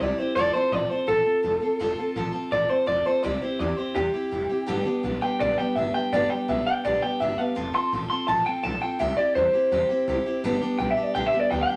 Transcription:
0.00 C2 G3 C4 E4 G4 D5
0.18 C4 E4 G4 C5, muted upright bass stroke
0.36 F1 F3 C4 F4 A4 D5
0.54 C4 F4 A4 C5, muted upright bass stroke
0.72 A1 F3 C4 F4 A4 D5
0.90 C4 F4 A4 C5, muted upright bass stroke
1.07 A1 F3 C4 F4 A4
1.24 C4 F4 A4, muted upright bass stroke
1.43 F1 F3 C4 F4 A4
1.61 C4 F4 A4, muted upright bass stroke
1.79 F1 F3 C4 F4 A4
1.98 C4 F4 A4, muted upright bass stroke
2.16 A1 F3 C4 F4 A4
2.33 C4 F4 A4, muted upright bass stroke
2.52 A1 F3 C4 F4 A4 D5
2.69 C4 F4 A4 C5, muted upright bass stroke
2.86 F1 F3 C4 F4 A4 D5
3.05 C4 F4 A4 C5, muted upright bass stroke
3.23 C2 C3 G3 C4 E4 G4 D5
3.41 C4 E4 G4 C5, muted upright bass stroke
3.59 E2 G3 C4 E4 G4 D5
3.77 C4 E4 G4 C5, muted upright bass stroke
3.95 E2 C3 G3 C4 E4 G4
4.13 C4 E4 G4, muted upright bass stroke
4.31 F1 G3 C4 E4 G4
4.49 C4 E4 G4, muted upright bass stroke
4.66 G1 G2 D3 G3 B3 D4 G4
4.85 G3 B3 D4 G4, muted upright bass stroke
5.03 B1 G3 B3 D4 G4
5.21 G3 B3 D4 G4 G5, muted upright bass stroke
5.40 B1 G2 D3 G3 B3 D4 G4 D5
5.58 G3 B3 D4 G4 G5, muted upright bass stroke
5.75 G1 G3 B3 D4 G4 E5
5.94 G3 B3 D4 G4 G5, muted upright bass stroke
6.12 G1 G2 D3 G3 B3 D4 G4 D5
6.30 G3 B3 D4 G4 G5, muted upright bass stroke
6.48 B1 G3 B3 D4 G4 E5
6.66 G3 B3 D4 G4 G5, muted upright bass stroke
6.85 B1 G2 D3 G3 B3 D4 G4 D5
7.02 G3 B3 D4 G4 G5, muted upright bass stroke
7.20 G1 G3 B3 D4 G4 E5
7.38 G3 B3 D4 G4 F5, muted upright bass stroke
7.55 F1 F3 C4 F4 A4
7.73 C4 F4 A4 C6, muted upright bass stroke
7.92 A1 F3 C4 F4 A4
8.10 C4 F4 A4 C6, muted upright bass stroke
8.28 A1 F3 C4 F4 A4 A5
8.45 C4 F4 A4 G5, muted upright bass stroke
8.63 B1 F3 C4 F4 A4 A5
8.81 C4 F4 A4 G5, muted upright bass stroke
8.99 C2 C3 G3 C4 E4 G4 E5
9.17 C4 E4 G4 D5, muted upright bass stroke
9.35 E2 G3 C4 E4 G4 C5
9.53 C4 E4 G4, muted upright bass stroke
9.72 E2 C3 G3 C4 E4 G4
9.89 C4 E4 G4, muted upright bass stroke
10.08 C2 G3 C4 E4 G4
10.26 C4 E4 G4, muted upright bass stroke
10.44 G1 G2 D3 G3 B3 D4 G4
10.61 G3 B3 D4 G4, muted upright bass stroke
10.79 B1 G3 B3 D4 G4 G5
10.91 E5
10.97 G3 B3 D4 G4, muted upright bass stroke
11.03 D5
11.15 B1 G2 D3 G3 B3 D4 G4 G5
11.26 E5
11.33 G3 B3 D4 G4, muted upright bass stroke
11.40 D5
11.51 D2 G3 B3 D4 G4 G5
11.63 G5
11.68 G3 B3 D4 G4, muted upright bass stroke

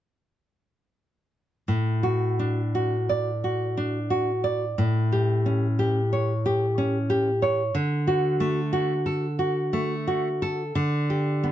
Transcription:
1.68 A2
2.03 F#4
2.39 D4
2.75 F#4
3.09 D5
3.44 F#4
3.77 D4
4.10 F#4
4.44 D5
4.78 A2
5.12 G4
5.46 C#4
5.79 G4
6.13 C#5
6.46 G4
6.78 C#4
7.10 G4
7.42 C#5
7.75 D3
8.07 F#4
8.40 A3
8.73 F#4
9.06 A4
9.39 F#4
9.73 A3
10.07 F#4
10.42 A4
10.75 D3
11.10 G4
11.44 B3

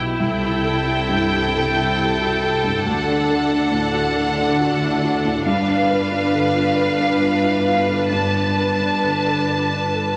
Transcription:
Already playing: B1 B2 E4 F#4 G4 B4
0.18 C2 C3 A4 G5
0.43 E4
0.63 A4
0.87 E4
1.09 G2
1.32 G4
1.54 A4
1.76 E4
1.99 G4
2.21 F#4
2.42 G4
2.64 G2
2.84 D2 D3 D4 F#5
3.08 D4
3.30 A4
3.51 D4
3.72 A2
3.94 F#4
4.15 A4
4.37 D4
4.60 F#4
4.82 E4
5.04 F#4
5.25 A2
5.45 G1 G2 B4 F5
5.68 D4
5.90 B4
6.12 D4
6.33 D3
6.54 F4
6.76 B4
6.98 D4
7.21 F4
7.43 E4
7.66 F4
7.87 D3
8.10 G2 D4 A5
8.34 D4
8.56 B4
8.80 D4
9.03 D3
9.26 A4
9.49 B4
9.71 D4
9.94 A4

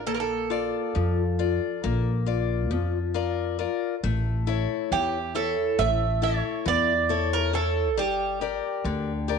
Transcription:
0.07 A#1 A#3 A4
0.14 A#4
0.20 A4
0.50 F4 D5
0.95 F2 F3
1.39 F4 D5
1.84 A#1 A#3
2.26 F4 D5
2.71 F2 F3
3.14 F4 A#4 D5
3.59 F4 A#4 D5
4.03 A1 A3
4.47 E4 A4 C#5
4.92 E2 E3 G4
5.35 E4 A4 C#5
5.79 A1 A3 E5
6.22 E4 A4 C#5 E5
6.66 E2 E3 D5
7.09 E4 A4 C#5
7.33 A#4
7.53 E4 A4 C#5
7.97 G1 G3 G4
8.41 G4 A#4 D5
8.84 D2 D3
9.28 G4 A#4 D5

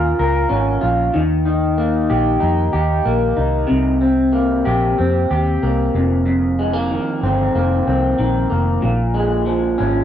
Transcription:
Already playing: D#2 A#2 C#4 F4 A#4
0.19 C#2 A#4
0.49 G#1 C#4
0.81 A#1 F4
1.14 D#2 D#3
1.46 D#4
1.78 A#3
2.10 A#1 G4
2.40 F2 D#4
2.73 D#2 G4
3.05 A#1 A#3
3.37 C2 D#4
3.67 C2 C3
4.01 C4
4.33 A#3
4.65 A#1 G4
4.98 F2 C4
5.31 D#2 G4
5.63 C2 A#3
5.95 F1 F2
6.26 F2
6.59 G#3
6.73 A#3
6.91 D#3
7.23 G1 C4
7.55 F1 A#3
7.87 C2 C4
8.19 A#1 D#3
8.50 F1 A#3
8.82 A#1 A#2
9.14 G#3
9.46 F3
9.78 G#1 C#4

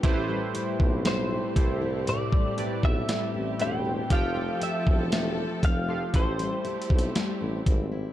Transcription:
Already playing: G3 B3 F4 A4
0.03 A1 A2 A3 C4 E4 G4 B4 C5, kick, closed hi-hat
0.29 G3
0.54 E4, closed hi-hat
0.80 B1 C4, kick
1.05 G3 C5, snare, closed hi-hat
1.31 E4
1.56 C2 A3 C4 E4 G4 A4 C5, kick, closed hi-hat
1.81 E4
2.07 A2 D5, closed hi-hat
2.32 G3, kick
2.57 B1 A3 E4 G4 B4 D5, closed hi-hat
2.83 B1 C4 E5, kick
3.09 G3, snare, closed hi-hat
3.34 A1 E4
3.59 E1 A3 C4 E4 G4 B4 C5 G5, closed hi-hat
3.85 E4
4.10 F1 F3 C4 F4 G4 A4 F5 G5, kick, closed hi-hat
4.36 A3
4.61 G4 E5, closed hi-hat
4.87 E1 E4, kick
5.12 A3, snare, closed hi-hat
5.37 G4
5.63 F1 F5, kick, closed hi-hat
5.88 F3 F4 G4 A4 F5
6.13 A1 A3 C4 E4 G4 A4 C5, kick, closed hi-hat
6.39 G3, closed hi-hat
6.65 B1 E4, closed hi-hat
6.82 closed hi-hat
6.90 B1 C4, kick
6.99 closed hi-hat
7.15 G3, snare, closed hi-hat
7.41 A1 E4
7.66 G#1 C4, kick, closed hi-hat
7.92 E4

